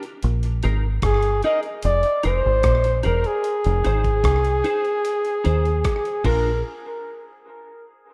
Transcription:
0.03 muted clean electric guitar stroke, closed hi-hat
0.23 A#1, closed hi-hat
0.43 closed hi-hat
0.63 G#1 D#4 G#4 A#4, closed hi-hat
1.02 G1 G#4, kick, cross-stick, closed hi-hat
1.23 closed hi-hat
1.43 D#4 G#4 A#4 D#5, closed hi-hat
1.63 closed hi-hat
1.83 F1 D5, closed hi-hat
2.03 closed hi-hat
2.23 F1 D#4 G#4 A#4 C5, closed hi-hat
2.46 G#1
2.63 A#1, kick, cross-stick, closed hi-hat
2.84 closed hi-hat
3.03 E1 D#4 G#4 A#4, closed hi-hat
3.24 G#4, muted clean electric guitar stroke, closed hi-hat
3.44 closed hi-hat
3.64 F1, closed hi-hat
3.84 G#1 D#4 G#4 C5, closed hi-hat
4.04 kick, closed hi-hat
4.24 C2, kick, cross-stick, closed hi-hat
4.45 closed hi-hat
4.64 D#4 G#4 C5, closed hi-hat
4.85 closed hi-hat
5.05 closed hi-hat
5.25 closed hi-hat
5.44 D#2 D#4 G#4 C5, closed hi-hat
5.65 closed hi-hat
5.84 kick, cross-stick, closed hi-hat
6.05 closed hi-hat
6.24 A#1 D4 F4 A#4, kick, crash

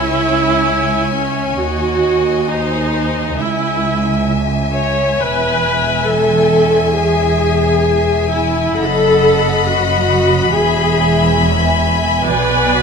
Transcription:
Already playing: C#2 E4 C#5 E5 G#5
1.14 C#4
1.60 D#2 F#4 D#5
2.50 D#4 C5
3.38 C#2 E4 E5 G#5
4.74 C#5
5.19 E1 E2 B4 G#5
6.07 A4
6.95 G#4
8.31 E4
8.79 F#1 F#2 A4 D#5 F#5 B5
9.68 F#4
10.54 E1 E2 G#4 E5 G#5
12.26 B1 B2 B4 D5 G#5

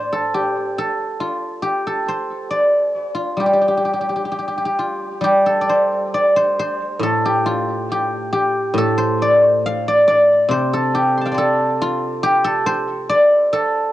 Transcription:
Already playing: A2 G4 A4 C5 D5 F5
0.13 A4
0.34 G4
0.78 A4
1.20 F4
1.62 G4
1.87 A4
2.08 C5
2.51 D5
3.14 F4
3.37 G3 G4
3.46 G4
3.53 G4
3.61 G4
3.68 G4
3.77 G4
3.85 G4
3.93 G4
4.01 G4
4.09 G4
4.16 G4
4.25 G4
4.31 G4
4.39 G4
4.48 G4
4.58 G4
4.65 G4
4.79 F4
5.21 G3 G4
5.46 A4
5.61 D5
5.69 C5
6.14 D5
6.36 C5
6.59 C5
6.99 A2 A4
7.25 G4
7.46 F4
7.92 G4
8.33 G4
8.74 A2
8.78 A4
8.98 C5
9.22 D5
9.48 C5
9.66 F5
9.88 D5
10.08 D5
10.49 C3 C5
10.73 A4
10.95 G4
11.17 A5 C6
11.25 F5 G5
11.32 C5 D5
11.38 A4
11.81 F4
12.23 G4
12.44 A4
12.66 C5
13.09 D5
13.53 A4

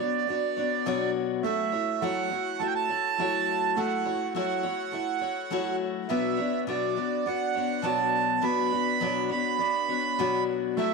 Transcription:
Already playing: B3 D4 F#4 D5
0.00 B3 D4 F#4 C#5
0.27 B3 D4 F#4 C#5
0.56 B3 D4 F#4 C#5
0.86 B2 F#3 B3 D4 F#4 C#5
1.43 F#3 A3 E4 F#4 C#5 E5
1.72 E4 F#4 C#5
2.01 F#3 A3 E4 F#4 C#5 F#5
2.30 E4 F#4 C#5
2.60 A3 E4 F#4 C#5 A5
2.66 G5
2.75 A5
2.89 E4 F#4 C#5
3.18 F#3 A3 E4 F#4 C#5
3.76 F#3 A3 E4 F#4 C#5 F#5
4.06 E4 F#4 C#5
4.35 F#3 A3 E4 F#4 C#5 F#5
4.63 E4 F#4 C#5
4.92 A3 E4 F#4 C#5
5.21 E4 F#4 C#5
5.50 F#3 A3 E4 F#4 C#5
6.09 B2 F#3 B3 D4 F#4 C#5 E5
6.37 B3 D4 F#4 C#5
6.67 B2 F#3 B3 D4 F#4 C#5 D5
6.95 B3 D4 F#4 C#5
7.26 B3 D4 F#4 C#5 F#5
7.55 B3 D4 F#4 C#5
7.82 B2 F#3 B3 D4 F#4 C#5 A5
8.42 B2 F#3 B3 D4 F#4 C#5 B5
8.71 B3 D4 F#4 C#5
9.00 B2 F#3 B3 D4 F#4 C#5
9.29 B3 D4 F#4 C#5 B5
9.59 B3 D4 F#4 C#5
9.89 B3 D4 F#4 C#5
10.18 B2 F#3 B3 D4 F#4 C#5
10.77 F#3 A3 E4 F#4 C#5 E5

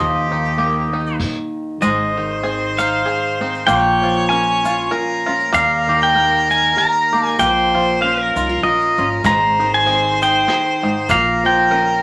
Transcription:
Already playing: D#2 D#3 F3 D#5
0.00 G4
0.31 D#3 D#4
0.45 shaker
0.57 A#3 G4, ride
0.92 D#4
1.07 shaker
1.20 kick, crash
1.81 G#1 G#2 G#3 C5 D#5, shaker
2.16 D#3 D#4
2.43 C4 G#4
2.78 D#4 F5, shaker
3.06 G#4
3.40 C4 D#4
3.55 shaker
3.67 A#1 A#2 A#3 C#5 G5, shaker
4.02 F3 F4
4.29 C#4 A#4 G#5
4.64 F4, shaker
4.91 F4 A#4
5.26 C#4 F4
5.40 shaker
5.52 D#2 G3 A#4 F5, shaker
5.87 D#3 G4
6.03 G5
6.15 A#3 A#4
6.50 D#4 G#5, shaker
6.76 G4 A#4 A#5
7.13 A#3 G4
7.26 G#5, shaker
7.38 A#1 A#2 A#3 C5 G5, shaker
7.75 F3 F4
8.01 C#4 A#4 F5
8.21 A#4
8.36 C2 D#4 F4, shaker
8.49 F4
8.62 A#1 F4 A#4 D#5, shaker
8.81 shaker
8.98 G#1 C#4 F4, shaker
9.23 G#1 G#2 G#3 C5 A#5, kick, ride, shaker
9.59 D#3 D#4, ride
9.74 G#5
9.86 C4 G#4, ride
10.21 D#4 G5, shaker
10.48 G#4, snare, ride
10.82 G#2 D#4
11.09 A#1 A#2 A#3 A#4 F5, kick, ride, shaker
11.43 F3 F4 G5, ride
11.71 C#4 A#4, ride

